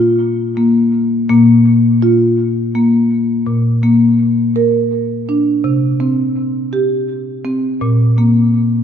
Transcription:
0.00 1.25 A#2 medium
0.00 0.57 F4 medium
0.57 1.28 A#3 medium
1.29 3.43 A#2 medium
1.29 2.02 A#3 medium
2.02 2.75 F4 medium
2.75 3.47 A#3 medium
3.46 5.60 A#2 medium
3.83 4.56 A#3 medium
4.56 5.29 A#4 medium
5.29 5.65 D4 medium
5.64 7.78 C3 medium
6.00 6.73 C4 medium
6.73 7.46 G4 medium
7.45 7.82 C4 medium
7.81 8.83 A#2 medium
8.18 8.83 A#3 medium

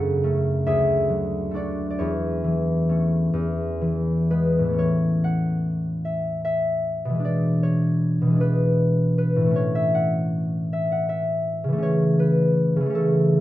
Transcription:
0.00 0.70 F#2 medium
0.00 0.71 C#3 soft
0.00 1.54 F#4 medium
0.00 3.40 A4 medium
0.00 0.70 C#5 medium
0.00 2.04 F#5 medium
0.24 1.51 A3 soft
0.24 0.70 C#4 soft
0.66 2.03 D2 medium
0.66 2.03 G#4 medium
0.66 2.18 E5 medium
1.09 2.03 F#3 soft
1.51 2.88 A3 soft
1.51 2.03 D4 soft
1.51 2.04 F#4 soft
1.56 1.89 D5 medium
1.90 2.05 D5 soft
1.99 3.32 E2 soft
1.99 5.90 E4 soft
1.99 3.38 C#5 medium
2.44 3.38 E3 soft
2.89 3.39 A3 soft
2.89 3.39 C#4 soft
3.33 4.83 E2 soft
3.81 4.63 E3 soft
4.30 4.84 G#3 soft
4.30 4.84 B3 soft
4.30 4.83 B4 medium
4.59 7.16 A2 soft
4.64 7.08 E3 soft
4.68 7.21 A3 soft
4.73 7.23 C#4 soft
4.79 7.26 C#5 medium
5.24 6.60 F#5 medium
6.05 6.43 E5 medium
6.45 9.74 E5 medium
7.05 8.20 B2 soft
7.10 8.25 E3 soft
7.14 8.30 G#3 soft
7.20 8.35 D4 soft
7.25 9.59 D5 medium
7.63 8.94 C#5 medium
8.22 9.50 B2 soft
8.26 9.40 E3 soft
8.31 9.54 G#3 soft
8.36 9.57 D4 soft
8.40 9.17 B4 medium
9.18 9.59 B4 medium
9.36 11.76 A2 soft
9.41 11.67 E3 soft
9.46 11.71 A3 soft
9.50 11.77 C#4 soft
9.56 11.81 C#5 medium
9.75 10.08 E5 medium
9.95 10.91 F#5 medium
10.73 11.08 E5 medium
10.92 11.23 F#5 medium
11.09 13.40 E5 medium
11.64 12.75 C#3 soft
11.68 12.79 E3 soft
11.73 12.84 A3 soft
11.78 12.89 C#4 soft
11.83 13.40 C#5 medium
12.19 13.40 B4 medium
12.76 13.40 C#3 medium
12.80 13.40 E3 soft
12.86 13.40 A3 soft
12.90 13.40 C#4 soft
12.95 13.40 A4 medium

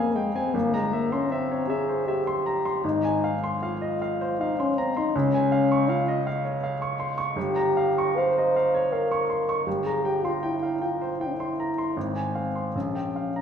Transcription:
0.00 0.50 F2 soft
0.00 0.17 A#3 medium
0.00 0.57 G#4 soft
0.00 0.56 D#5 soft
0.00 0.57 F5 soft
0.00 0.36 G#5 soft
0.15 0.34 G#3 medium
0.15 0.35 G5 soft
0.35 0.55 C4 medium
0.35 0.54 G#5 soft
0.54 2.80 G1 medium
0.54 0.75 A#3 medium
0.74 0.94 G#3 medium
0.74 1.05 A#5 soft
0.93 1.13 A#3 medium
0.93 1.24 E5 soft
1.12 1.32 C#4 medium
1.12 1.43 C6 soft
1.31 1.71 C4 medium
1.31 1.62 E5 soft
1.52 1.70 C#5 soft
1.69 2.09 G#4 medium
1.69 2.00 E5 soft
1.89 2.19 C5 soft
2.07 2.84 G4 medium
2.07 2.38 E5 soft
2.27 2.57 C6 soft
2.46 2.65 A#5 soft
2.65 2.84 C6 soft
2.84 5.10 G#1 medium
2.84 3.34 D#4 medium
3.04 3.35 G#5 soft
3.24 3.54 F5 soft
3.44 3.74 C6 soft
3.63 4.41 F4 medium
3.63 3.93 F5 soft
3.82 4.01 D#5 soft
4.02 4.32 F5 soft
4.21 4.51 C5 soft
4.39 4.61 D#4 medium
4.39 4.70 F5 soft
4.59 4.79 C#4 medium
4.59 4.89 C6 soft
4.78 4.96 C4 medium
4.78 4.96 A#5 soft
4.97 5.17 D#4 medium
4.97 5.15 C6 soft
5.15 7.33 C#2 medium
5.15 5.91 C#4 medium
5.34 5.63 G#5 soft
5.52 5.81 F5 soft
5.72 6.01 C#6 soft
5.89 6.26 F4 medium
5.89 6.19 F5 soft
6.08 6.26 D#5 soft
6.27 6.56 F5 soft
6.45 6.74 C#5 soft
6.64 6.92 F5 soft
6.82 7.11 C#6 soft
7.00 7.18 C6 soft
7.18 7.36 C#6 soft
7.36 9.62 G1 medium
7.36 8.18 G4 medium
7.56 7.89 A#5 soft
7.77 8.09 F5 soft
7.98 8.29 C#6 soft
8.17 8.94 C5 medium
8.17 8.48 F5 soft
8.38 8.56 D#5 soft
8.56 8.85 F5 soft
8.75 9.04 C#5 soft
8.92 9.66 A#4 medium
8.92 9.22 F5 soft
9.11 9.41 C#6 soft
9.30 9.48 C6 soft
9.49 9.67 C#6 soft
9.66 11.92 G1 soft
9.66 9.87 G4 medium
9.86 10.06 G#4 medium
9.86 10.16 A#5 soft
10.05 10.25 G4 medium
10.05 10.35 G5 soft
10.24 10.45 F4 medium
10.24 10.55 C6 soft
10.43 10.83 E4 medium
10.43 10.74 G5 soft
10.63 10.81 F5 soft
10.81 11.21 F4 medium
10.81 11.12 G5 soft
11.01 11.31 C5 soft
11.20 11.28 E4 medium
11.20 11.51 G5 soft
11.27 11.35 C#4 soft
11.33 11.99 E4 medium
11.40 11.70 C6 soft
11.60 11.78 A#5 soft
11.78 11.97 C6 soft
11.97 12.73 G#1 soft
11.97 12.77 C4 medium
12.16 12.47 G#5 soft
12.35 12.67 F5 soft
12.56 12.75 C6 soft
12.75 13.42 A#1 soft
12.75 13.42 C#4 medium
12.95 13.28 G5 soft
13.16 13.42 F5 soft
13.36 13.42 A#5 soft

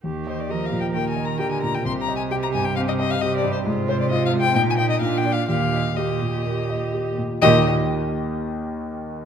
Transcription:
0.04 0.92 D#2 soft
0.04 0.52 D#3 soft
0.04 0.52 G4 soft
0.27 0.42 C5 soft
0.27 0.63 D#5 soft
0.40 0.52 D5 soft
0.49 0.96 F3 soft
0.49 0.85 G4 soft
0.49 1.85 A#4 soft
0.49 0.67 D#5 medium
0.66 0.80 F5 soft
0.72 1.08 A#2 soft
0.80 0.86 G5 soft
0.94 1.42 D#3 soft
0.94 1.31 A#3 soft
0.94 1.09 G5 medium
1.09 1.27 G#5 medium
1.17 1.54 D#5 soft
1.25 1.39 A#5 medium
1.39 1.85 D3 soft
1.39 1.76 G4 soft
1.39 1.51 G5 medium
1.51 1.62 G#5 medium
1.62 1.86 A#2 soft
1.62 1.76 A#5 medium
1.74 1.85 G5 medium
1.85 2.74 C2 soft
1.85 3.20 C3 medium
1.85 2.31 G4 soft
1.85 1.92 C6 medium
2.01 2.16 A#5 medium
2.08 2.45 D#5 soft
2.16 2.22 G#5 medium
2.31 2.68 G4 soft
2.31 2.77 G4 soft
2.31 2.36 G5 medium
2.43 2.47 A#5 medium
2.53 2.91 G2 soft
2.53 2.66 G#5 medium
2.65 2.75 G5 medium
2.76 3.13 C4 soft
2.76 3.21 G4 soft
2.76 2.81 F5 medium
2.88 2.93 D#5 medium
2.99 3.12 D#5 medium
2.99 3.36 D#5 soft
3.11 3.22 F5 medium
3.21 3.66 C3 medium
3.21 3.66 G4 medium
3.21 3.58 G4 soft
3.21 3.36 D#5 medium
3.37 3.52 D5 medium
3.44 3.67 G2 soft
3.52 3.58 C5 medium
3.66 4.53 G#2 medium
3.66 4.57 C3 medium
3.66 4.57 F4 medium
3.88 3.99 C5 medium
3.88 4.25 C5 medium
4.00 4.10 D5 medium
4.10 4.47 F4 medium
4.10 4.25 D#5 medium
4.26 4.32 F5 medium
4.34 4.56 G#3 soft
4.40 4.55 G5 medium
4.55 4.99 A#2 medium
4.55 5.01 A#2 medium
4.55 5.03 D#4 soft
4.55 4.61 G5 medium
4.70 4.73 G#5 medium
4.77 4.99 D#4 soft
4.77 5.00 D#5 soft
4.77 4.89 G5 medium
4.90 5.01 D#5 medium
5.01 5.47 A#2 medium
5.01 5.48 A#2 medium
5.01 5.48 D4 soft
5.01 5.19 F5 medium
5.17 5.34 G5 medium
5.25 5.47 F4 soft
5.25 5.47 D5 soft
5.33 5.48 F5 medium
5.48 6.43 D#2 soft
5.48 5.96 A#2 soft
5.48 5.96 G4 soft
5.48 5.98 F5 medium
5.73 6.12 D#5 soft
5.97 7.18 A#2 soft
5.97 7.18 G4 soft
5.97 6.36 G4 soft
5.97 7.18 D#5 medium
6.22 6.60 A#2 soft
6.46 6.84 A#3 soft
6.70 7.08 D#5 soft
6.94 7.33 G4 soft
7.18 7.42 A#2 soft
7.42 7.69 D#2 medium
7.42 7.69 A#2 medium
7.42 7.69 D#3 medium
7.42 7.69 A#3 medium
7.42 7.69 G4 medium
7.42 7.69 D#5 loud
7.42 7.69 D#5 medium
7.42 7.69 G5 medium

